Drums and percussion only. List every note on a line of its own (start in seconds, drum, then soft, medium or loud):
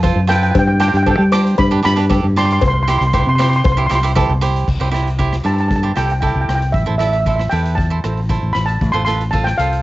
0.04 kick loud
0.04 closed hi-hat medium
0.04 cowbell medium
0.30 cross-stick medium
0.30 closed hi-hat medium
0.43 closed hi-hat medium
0.55 kick loud
0.55 closed hi-hat medium
0.55 cowbell loud
0.81 cross-stick medium
0.81 closed hi-hat medium
0.95 closed hi-hat medium
1.06 kick medium
1.06 closed hi-hat medium
1.06 cowbell medium
1.32 cross-stick medium
1.32 closed hi-hat loud
1.32 cowbell medium
1.47 closed hi-hat medium
1.58 kick loud
1.58 closed hi-hat medium
1.58 cowbell medium
1.85 cross-stick loud
1.85 closed hi-hat medium
1.99 closed hi-hat medium
2.10 kick loud
2.10 closed hi-hat medium
2.10 cowbell medium
2.37 cross-stick medium
2.37 closed hi-hat medium
2.50 closed hi-hat medium
2.61 kick loud
2.61 closed hi-hat medium
2.61 cowbell loud
2.88 cross-stick medium
2.88 closed hi-hat medium
3.01 closed hi-hat medium
3.14 kick medium
3.14 closed hi-hat medium
3.14 cowbell medium
3.39 cross-stick medium
3.39 closed hi-hat loud
3.39 cowbell medium
3.53 closed hi-hat medium
3.64 kick loud
3.64 closed hi-hat medium
3.64 cowbell medium
3.91 cross-stick medium
3.91 closed hi-hat medium
4.04 closed hi-hat medium
4.16 kick medium
4.16 closed hi-hat medium
4.16 cowbell medium
4.42 closed hi-hat medium
4.56 closed hi-hat medium
4.68 kick loud
4.68 crash medium
4.94 cross-stick medium
4.94 closed hi-hat medium
5.07 closed hi-hat medium
5.19 kick medium
5.19 closed hi-hat medium
5.33 cross-stick medium
5.45 closed hi-hat medium
5.58 closed hi-hat medium
5.71 kick loud
5.71 closed hi-hat medium
5.97 cross-stick medium
5.97 closed hi-hat medium
6.10 closed hi-hat medium
6.23 kick medium
6.23 closed hi-hat medium
6.49 cross-stick medium
6.49 closed hi-hat medium
6.62 closed hi-hat medium
6.74 kick medium
6.74 closed hi-hat medium
7.01 cross-stick medium
7.01 closed hi-hat medium
7.13 closed hi-hat medium
7.26 kick medium
7.26 closed hi-hat medium
7.39 cross-stick medium
7.52 closed hi-hat medium
7.65 closed hi-hat medium
7.78 kick loud
7.78 closed hi-hat medium
8.04 cross-stick medium
8.04 closed hi-hat medium
8.17 closed hi-hat medium
8.30 kick medium
8.30 closed hi-hat medium
8.55 cross-stick medium
8.55 closed hi-hat medium
8.68 closed hi-hat medium
8.81 kick loud
8.81 closed hi-hat medium
9.08 cross-stick medium
9.08 closed hi-hat medium
9.21 closed hi-hat medium
9.33 kick medium
9.33 closed hi-hat medium
9.47 cross-stick medium
9.59 closed hi-hat medium
9.73 closed hi-hat medium